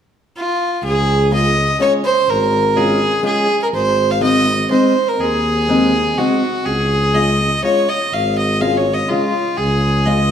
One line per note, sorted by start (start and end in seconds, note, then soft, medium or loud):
0.36 0.80 F4 medium
0.83 1.77 C#2 medium
0.83 1.28 G#4 medium
1.31 1.54 G#3 soft
1.31 1.54 C#4 soft
1.31 1.54 F4 soft
1.31 1.77 D#5 medium
1.79 2.02 G#3 soft
1.79 2.02 C#4 soft
1.79 2.02 F4 soft
1.79 1.92 C#5 medium
2.05 2.31 C5 medium
2.28 3.22 G#1 medium
2.28 2.78 A#4 medium
2.76 2.98 G#3 medium
2.76 2.99 C#4 medium
2.76 2.99 F4 medium
2.76 3.24 G#4 medium
3.23 3.46 G#3 soft
3.23 3.46 C#4 soft
3.23 3.46 F4 medium
3.23 3.58 G#4 medium
3.62 3.67 A#4 medium
3.72 4.67 G#1 medium
3.72 4.12 C5 medium
4.11 4.22 F5 medium
4.21 4.43 G#3 medium
4.21 4.43 C4 soft
4.21 4.44 D#4 medium
4.21 4.67 D#5 medium
4.70 4.93 G#3 soft
4.70 4.93 C4 soft
4.70 4.93 D#4 soft
4.70 5.10 C5 medium
5.08 5.22 A#4 medium
5.19 6.15 D#2 medium
5.19 6.19 G#4 medium
5.68 5.90 G#3 soft
5.68 5.91 C4 soft
5.68 5.91 D#4 medium
6.18 6.40 G#3 soft
6.18 6.40 C4 soft
6.18 6.40 D#4 medium
6.18 6.67 F#4 medium
6.65 7.62 C#2 medium
6.65 7.16 G#4 medium
7.14 7.38 G#3 soft
7.14 7.38 C#4 soft
7.14 7.38 F4 medium
7.14 7.64 D#5 medium
7.63 7.86 G#3 soft
7.63 7.87 C#4 soft
7.63 7.87 F4 soft
7.63 7.90 C#5 medium
7.88 8.15 D#5 medium
8.13 9.07 G#1 medium
8.13 8.38 F5 medium
8.38 8.62 D#5 medium
8.61 8.84 G#3 medium
8.61 8.84 C#4 soft
8.61 8.84 F4 medium
8.61 8.78 F5 medium
8.77 8.95 C#5 medium
8.94 9.10 D#5 medium
9.09 9.32 G#3 soft
9.09 9.32 C#4 soft
9.09 9.58 F4 medium
9.09 9.32 F4 medium
9.57 10.31 C#2 medium
9.57 10.06 G#4 medium
10.05 10.29 G#3 medium
10.05 10.29 C#4 soft
10.05 10.29 F4 medium
10.05 10.31 D#5 medium